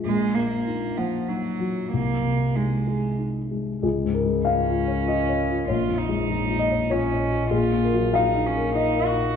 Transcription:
0.05 A#1 G#3
0.35 A#2 A#3
0.67 D#4
0.98 F3 F#5
1.28 F#3 D#4
1.60 F#3
1.93 C2 A#3
2.23 C3
2.55 G#3 D#4
2.87 G#4
3.18 D#4
3.51 G#3
3.82 C#2 G#4
4.05 G#2
4.14 A#4
4.25 G#3
4.45 G#2 C#4 F5
4.68 F4
4.87 C#5
5.07 F4 D#5
5.29 C#5
5.50 F4
5.68 A#1 F4 C#5
5.88 F2
5.98 D#4
6.09 G#3
6.29 F2
6.50 F4
6.59 D#5
6.71 C#5
6.90 C#4 F4 C#5
7.12 C#5
7.31 F4
7.51 A#1 F4 G#4
7.72 A#2
7.84 A#4
7.94 F#3
8.14 A#2 D#4 F5
8.36 D#4
8.47 C#4
8.57 A#4
8.75 D#4 D#5
8.95 A#4
9.06 F#4
9.15 D#4

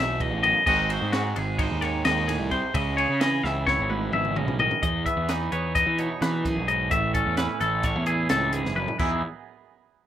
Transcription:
Already playing: B1 E2 B2 E3 D#4 F#4 E5
0.20 E2 D#5, kick, ride
0.32 A1
0.43 F#2 D#5, ride
0.66 G#1 G#2 G#3 C4 D#4 F#4 D#5, kick, crash
0.90 F#4 C5, ride
1.02 G#2
1.12 G#3 F#4, snare, ride
1.36 G#1 G#4, ride
1.58 D#4 C5, kick, ride
1.71 D#2
1.81 D#3 C#5, snare, ride
2.05 D#2 G#2 D#5, snare, ride
2.28 A2 G#4, snare, ride
2.40 C2
2.51 C3 C5, kick, snare, ride
2.74 C#2 C#3 D#5, kick, ride
2.97 G#4 C#5, ride
3.09 C#3
3.20 E3 D#5, snare, ride
3.44 C#2 E5, snare
3.67 E4 C#5, kick, snare
3.79 G#1
3.90 G#2 B4, high tom
4.12 G#1 B2 E5, mid tom
4.25 mid tom
4.36 C#3 D#5, mid tom
4.47 B1, floor tom
4.59 D#3 D#5, floor tom
4.71 floor tom
4.82 E2 D#5, kick, closed hi-hat
5.06 B3 E5, kick, closed hi-hat
5.17 E2
5.29 E3 D#4 B4, snare, closed hi-hat
5.52 E2 B4 C#5, closed hi-hat
5.75 D#5, kick, snare, closed hi-hat
5.87 E3
5.98 B2 D#4 C#5, closed hi-hat
6.21 E2 E3 B4, snare, closed hi-hat
6.44 F#2 G#4, kick, snare, closed hi-hat
6.57 B1
6.68 G#2 D#5, closed hi-hat
6.90 A1 A2 E5, kick, closed hi-hat
7.14 C#4 A4, kick, closed hi-hat
7.26 E2
7.37 E3 E4 B4, snare, closed hi-hat
7.61 A1 A4, snare, closed hi-hat
7.83 C#5, kick, snare, closed hi-hat
7.96 E2
8.06 E3 E4 G#4, closed hi-hat
8.29 C#2 A2 A4, snare, closed hi-hat
8.53 G#2 G#4, closed hi-hat
8.65 F#1, snare
8.76 F#2 B4, mid tom
8.88 floor tom
8.99 E2 E3 B3 D#4 E4 G#4, kick, crash

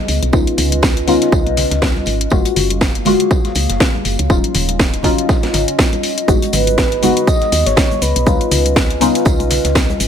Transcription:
0.08 C#2 C#4 F4 B4 D#5, open hi-hat, tambourine
0.23 B1, closed hi-hat
0.32 C#2 B3 C#4 D#4 F4, kick, tambourine, high conga
0.47 closed hi-hat
0.58 C#2, open hi-hat, tambourine, low conga
0.72 closed hi-hat, high conga
0.82 kick, snare, tambourine
0.97 closed hi-hat
1.07 B3 C#4 D#4 F4, open hi-hat, tambourine, high conga, low conga
1.22 snare, closed hi-hat
1.32 C#2, kick, tambourine
1.46 B1, closed hi-hat, high conga
1.57 snare, open hi-hat, tambourine, low conga
1.71 C#2, snare, closed hi-hat
1.82 kick, snare, tambourine
1.96 snare, high conga
2.06 G#1, open hi-hat, tambourine
2.21 closed hi-hat
2.30 F#1 F#3 G#3 A#3 F4 F#4 G#4 F5, kick, tambourine, high conga
2.45 closed hi-hat
2.56 F#1, open hi-hat, tambourine, low conga
2.70 closed hi-hat, high conga
2.81 kick, snare, tambourine
2.95 closed hi-hat
3.05 G#3 A#3 F4 F#4, open hi-hat, tambourine, high conga, low conga
3.20 closed hi-hat
3.31 kick, tambourine
3.45 snare, closed hi-hat, high conga
3.55 C#2, open hi-hat, tambourine
3.70 F#1, snare, closed hi-hat
3.80 kick, snare, tambourine, low conga
3.94 high conga
4.05 F#1, open hi-hat, tambourine
4.19 C#2, closed hi-hat
4.29 D#1 F#3 C#4 D#4 F4 D#5, kick, tambourine, high conga
4.44 closed hi-hat
4.55 D#1, open hi-hat, tambourine, low conga
4.69 closed hi-hat, high conga
4.79 kick, snare, tambourine
4.94 closed hi-hat
5.03 F#3 C#4 D#4 F4, kick, open hi-hat, tambourine, high conga, low conga
5.18 closed hi-hat
5.29 kick, snare, tambourine
5.43 snare, closed hi-hat, high conga
5.53 G#1, snare, open hi-hat, tambourine, low conga
5.68 closed hi-hat
5.79 kick, snare, tambourine
5.93 closed hi-hat, high conga
6.03 open hi-hat, tambourine
6.18 closed hi-hat
6.27 G#1 G#3 B3 D#4 F#4 G#4, kick, tambourine, high conga, shaker
6.42 closed hi-hat, shaker
6.53 G#1 B4, open hi-hat, tambourine, low conga, shaker
6.67 closed hi-hat, high conga, shaker
6.78 kick, snare, tambourine, shaker
6.92 closed hi-hat
7.02 G#3 B3 D#4 F#4, open hi-hat, tambourine, high conga, low conga, shaker
7.17 closed hi-hat, shaker
7.27 D#5, kick, tambourine, shaker
7.41 snare, closed hi-hat, high conga
7.52 D#2, open hi-hat, tambourine, shaker
7.66 G#1 C#5, snare, closed hi-hat, shaker
7.76 kick, snare, tambourine, low conga, shaker
7.91 high conga, shaker
8.02 C#2 C#4 F4 B4, open hi-hat, tambourine, shaker
8.16 B1, closed hi-hat, shaker
8.26 C#2 B3 C#4 D#4 F4, kick, tambourine, high conga, shaker
8.41 closed hi-hat, shaker
8.51 C#2, open hi-hat, tambourine, low conga, shaker
8.65 closed hi-hat, high conga, shaker
8.76 kick, snare, tambourine, shaker
8.90 closed hi-hat
9.00 B3 C#4 D#4 F4, open hi-hat, tambourine, high conga, low conga, shaker
9.15 snare, closed hi-hat, shaker
9.25 C#2, kick, tambourine, shaker
9.39 B1, closed hi-hat, high conga, shaker
9.50 snare, open hi-hat, tambourine, low conga, shaker
9.64 C#2, snare, closed hi-hat, shaker
9.75 kick, snare, tambourine, shaker
9.89 snare, high conga, shaker
10.00 G#1, open hi-hat, tambourine, shaker

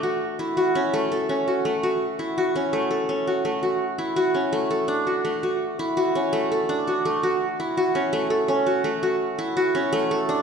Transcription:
Already playing: A3 D4 A4
0.03 F#4
0.39 E4
0.57 F#4
0.75 C#4
0.94 A3
1.12 A4
1.29 C#4
1.48 F#4
1.65 A3
1.83 F#4
2.19 E4
2.38 F#4
2.56 C#4
2.73 A3
2.91 A4
3.09 C#4
3.27 F#4
3.45 A3
3.63 F#4
3.98 E4
4.16 F#4
4.34 C#4
4.53 A3
4.70 A4
4.88 D4
5.07 F#4
5.25 A3
5.43 F#4
5.79 E4
5.97 F#4
6.15 C#4
6.33 A3
6.52 A4
6.69 D4
6.87 F#4
7.05 A3
7.23 F#4
7.60 E4
7.77 F#4
7.95 C#4
8.13 A3
8.30 A4
8.48 C#4
8.66 F#4
8.84 A3
9.03 F#4
9.39 E4
9.57 F#4
9.75 C#4
9.93 A3
10.11 A4
10.29 D4

